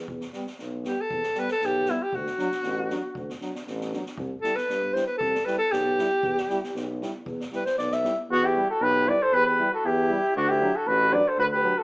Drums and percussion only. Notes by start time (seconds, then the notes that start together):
0.08 kick
0.21 snare
0.33 snare
0.47 snare
0.59 snare
0.84 snare
1.10 kick
1.23 snare
1.35 snare
1.48 snare
1.61 snare
1.86 snare
2.13 kick
2.26 snare
2.39 snare
2.51 snare
2.63 snare
2.90 snare
3.15 kick
3.30 snare
3.41 snare
3.55 snare
3.67 snare
3.81 snare
3.93 snare
4.06 snare
4.18 kick
4.44 snare
4.57 snare
4.70 snare
4.96 snare
5.21 kick
5.35 snare
5.47 snare
5.73 snare
5.98 snare
6.23 kick
6.37 snare
6.50 snare
6.64 snare
6.76 snare
7.02 snare
7.26 kick
7.40 snare
7.52 snare
7.66 snare
7.78 snare
7.91 snare
8.04 snare